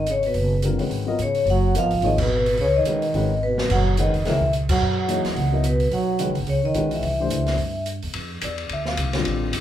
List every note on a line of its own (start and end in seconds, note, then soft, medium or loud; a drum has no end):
0.00 0.32 G#1 medium
0.06 0.24 C#3 medium
0.06 closed hi-hat soft
0.11 0.25 C#5 medium
0.23 0.62 B2 medium
0.23 0.62 B4 medium
0.23 open hi-hat soft
0.34 0.76 F#1 medium
0.34 open hi-hat soft
0.62 0.78 D3 medium
0.62 0.78 G3 medium
0.62 0.79 C4 medium
0.62 0.79 F4 medium
0.62 0.79 A#4 medium
0.62 closed hi-hat medium
0.78 0.89 C2 medium
0.78 1.04 D#3 medium
0.78 1.04 G#3 medium
0.78 1.04 C#4 medium
0.78 1.04 F#4 medium
0.78 1.05 B4 medium
0.78 open hi-hat soft
0.90 1.16 G#1 medium
0.90 open hi-hat soft
1.06 1.17 F#3 medium
1.06 1.18 B3 medium
1.06 1.18 F4 medium
1.06 1.18 A#4 medium
1.06 1.18 D#5 medium
1.19 1.45 G#2 medium
1.19 1.47 C#5 medium
1.19 closed hi-hat soft
1.23 1.47 C#3 medium
1.35 open hi-hat soft
1.46 1.81 F#1 medium
1.46 open hi-hat soft
1.50 1.75 F#3 medium
1.50 1.77 F#5 loud
1.74 2.02 F3 medium
1.74 1.89 F#3 medium
1.74 1.89 B3 medium
1.74 1.90 F4 medium
1.74 1.90 A#4 medium
1.74 1.90 D#5 medium
1.74 2.05 F5 loud
1.74 closed hi-hat medium
1.83 1.92 G#1 medium
1.91 2.01 B1 medium
1.91 open hi-hat soft
2.01 2.55 G#1 medium
2.01 2.17 F3 medium
2.01 2.17 A#3 medium
2.01 2.18 D#4 medium
2.01 2.18 G#4 medium
2.01 2.18 C#5 medium
2.01 open hi-hat soft
2.05 2.19 D#3 medium
2.05 2.21 D#5 medium
2.18 2.46 B2 medium
2.18 2.46 B4 medium
2.18 kick medium
2.18 crash medium
2.46 2.60 B4 medium
2.46 open hi-hat soft
2.50 2.60 B2 medium
2.57 2.84 C#2 medium
2.57 2.68 C#3 medium
2.57 open hi-hat soft
2.61 2.68 C#5 loud
2.76 3.40 D#3 medium
2.76 3.45 D#5 medium
2.85 3.12 B1 medium
2.85 3.01 D#3 medium
2.85 3.01 G#3 medium
2.85 3.01 C#4 medium
2.85 3.02 F#4 medium
2.85 3.02 B4 medium
2.85 closed hi-hat medium
3.02 open hi-hat soft
3.14 3.67 G#1 medium
3.14 3.29 D#3 medium
3.14 3.30 G#3 medium
3.14 3.30 C#4 medium
3.14 3.30 F#4 medium
3.14 3.30 B4 medium
3.14 open hi-hat soft
3.43 3.70 B2 medium
3.43 3.69 B4 medium
3.58 snare medium
3.69 4.10 F#1 medium
3.69 3.97 F#3 medium
3.69 3.99 F#5 loud
3.69 kick medium
3.69 crash medium
3.97 4.13 D#3 medium
3.97 4.24 D#3 medium
3.97 4.13 G#3 medium
3.97 4.13 C#4 medium
3.97 4.14 F#4 medium
3.97 4.14 B4 medium
3.97 4.27 D#5 medium
3.97 closed hi-hat medium
4.14 4.25 F1 medium
4.14 open hi-hat soft
4.25 4.67 C#2 medium
4.25 4.40 D#3 medium
4.25 4.52 E3 medium
4.25 4.40 G#3 medium
4.25 4.41 C#4 medium
4.25 4.41 F#4 medium
4.25 4.41 A#4 medium
4.25 4.52 E5 medium
4.25 snare soft
4.25 open hi-hat soft
4.41 kick medium
4.53 closed hi-hat soft
4.69 4.80 F2 medium
4.69 5.49 F#3 medium
4.69 5.50 F#5 loud
4.69 kick medium
4.69 crash medium
4.82 5.22 F#2 medium
5.08 5.49 E3 medium
5.08 5.50 A#3 medium
5.08 5.50 D#4 medium
5.08 5.50 G#4 medium
5.08 5.50 C#5 medium
5.08 closed hi-hat medium
5.25 5.35 E2 medium
5.25 snare soft
5.25 open hi-hat soft
5.35 5.89 C#2 medium
5.35 open hi-hat soft
5.52 5.63 F#3 medium
5.52 5.63 B3 medium
5.52 5.63 E4 medium
5.52 5.64 A#4 medium
5.52 5.64 D#5 medium
5.64 5.90 B2 medium
5.64 5.94 B4 medium
5.64 closed hi-hat medium
5.80 open hi-hat soft
5.91 6.26 B1 medium
5.91 6.33 F#3 medium
5.91 6.34 F#5 medium
5.91 open hi-hat soft
6.19 6.34 D#3 medium
6.19 6.35 G#3 medium
6.19 6.35 C#4 medium
6.19 6.35 F#4 medium
6.19 6.35 B4 medium
6.19 closed hi-hat medium
6.28 6.37 C#2 medium
6.35 6.46 G1 medium
6.35 open hi-hat soft
6.47 6.73 C#2 medium
6.47 6.62 C#3 medium
6.47 6.65 C#5 medium
6.47 open hi-hat soft
6.64 6.90 D#3 medium
6.64 6.93 D#5 medium
6.74 7.01 B1 medium
6.74 7.03 D#3 medium
6.74 7.03 G#3 medium
6.74 7.04 C#4 medium
6.74 7.04 F#4 medium
6.74 7.04 B4 medium
6.74 closed hi-hat medium
6.91 7.83 E3 medium
6.91 7.84 E5 medium
6.91 open hi-hat soft
7.03 7.29 C2 medium
7.03 open hi-hat soft
7.20 7.57 E3 medium
7.20 7.57 A3 medium
7.20 7.57 D4 medium
7.20 7.57 G4 medium
7.20 7.58 C5 medium
7.30 7.57 C#2 medium
7.30 closed hi-hat medium
7.46 snare soft
7.46 open hi-hat soft
7.58 7.99 G2 medium
7.58 open hi-hat soft
7.86 closed hi-hat medium
8.02 8.14 E2 medium
8.02 open hi-hat soft
8.14 8.41 F2 medium
8.14 ride medium
8.41 8.69 E2 medium
8.41 8.69 D5 medium
8.41 hi-hat pedal medium
8.41 ride medium
8.58 ride soft
8.69 8.97 D2 medium
8.69 8.87 E5 medium
8.69 ride medium
8.85 9.24 F5 medium
8.85 snare soft
8.97 9.25 C2 medium
8.97 hi-hat pedal medium
8.97 ride medium
9.13 9.51 D3 medium
9.13 9.52 G3 medium
9.13 9.52 C4 medium
9.13 9.52 F4 medium
9.13 snare medium
9.13 ride soft
9.25 9.53 A1 medium
9.25 ride medium
9.53 9.61 G1 medium
9.53 hi-hat pedal medium
9.53 ride medium